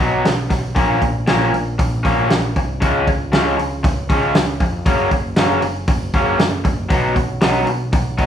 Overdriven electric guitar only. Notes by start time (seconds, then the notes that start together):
0.00 B2 F#3 B3 D#4
0.24 muted overdriven electric guitar stroke
0.50 muted overdriven electric guitar stroke
0.75 A#2 F3 A#3 C#4
1.02 muted overdriven electric guitar stroke
1.27 A#2 F3 A#3 C#4
1.53 muted overdriven electric guitar stroke
1.79 muted overdriven electric guitar stroke
2.03 A#2 F3 A#3 C#4
2.31 muted overdriven electric guitar stroke
2.57 muted overdriven electric guitar stroke
2.81 C#3 F3 G#3 C#4
3.08 muted overdriven electric guitar stroke
3.32 C#3 F3 G#3 C#4
3.57 muted overdriven electric guitar stroke
3.83 muted overdriven electric guitar stroke
4.10 C#3 F3 G#3 C#4
4.35 muted overdriven electric guitar stroke
4.61 muted overdriven electric guitar stroke
4.86 C#3 F#3 A#3 C#4
5.11 muted overdriven electric guitar stroke
5.37 C#3 F#3 A#3 C#4
5.63 muted overdriven electric guitar stroke
5.88 muted overdriven electric guitar stroke
6.14 C#3 F#3 A#3 C#4
6.39 muted overdriven electric guitar stroke
6.64 muted overdriven electric guitar stroke
6.89 B2 F#3 B3 D#4
7.15 muted overdriven electric guitar stroke
7.41 B2 F#3 B3 D#4
7.67 muted overdriven electric guitar stroke
7.93 muted overdriven electric guitar stroke
8.18 B2 F#3 B3 D#4